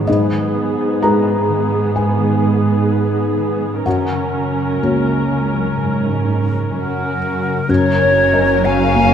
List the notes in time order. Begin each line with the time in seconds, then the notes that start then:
Already playing: D#3 F3 F#3 D#4 F4 A#4 C#5
0.07 G#2 B3 G#4 D#5
0.31 D#3
0.55 G#3
0.78 D#4
1.02 G#3 D#4 B4 A#5
1.26 D#4
1.49 D#3
1.72 G#3
1.95 G#2 G#5
2.19 D#3
2.43 G#3
2.66 D#4
2.90 B4
3.13 D#4
3.37 D#3
3.61 G#3
3.85 F#2 C#4 A#4 F#5
4.10 C#3
4.35 C#4
4.59 F#4
4.82 C#2 A#3 F#4 C#5
5.07 F#4
5.31 C#3
5.55 F#3
5.79 F#2 G#2
6.03 C#3
6.50 F#4
6.73 F#2 F#4 A#4 C#5
6.99 F#4
7.22 C#3
7.68 F#1 F#2 F#3 C#4 A#4 C#5
8.02 C#5
8.33 F#4 D#5
8.64 C#5 F5 G#5 A#5
8.96 A#3 C#5